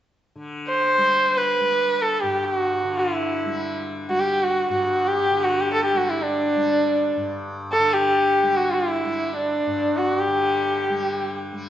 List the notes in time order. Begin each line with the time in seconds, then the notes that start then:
0.36 D3
0.69 C5
0.98 G3
1.37 B4
1.60 G3
2.02 A4
2.22 G2 G4
2.45 G4
2.57 F#4
2.84 D3
2.99 E4
3.45 G3
4.09 G3 F#4
4.20 G4
4.43 F#4
4.70 G2 F#4
5.07 G4
5.31 D3
5.44 F#4
5.60 G4
5.73 A4
5.85 G4
5.93 G3 F#4
6.10 E4
6.22 D4
6.56 G3
7.17 G2
7.72 A4
7.79 D3
7.94 G4
8.43 G3
8.57 F#4
8.74 E4
9.05 G3
9.36 D4
9.67 G2
9.98 F#4
10.19 G4
10.28 D3
10.90 G3
11.53 G3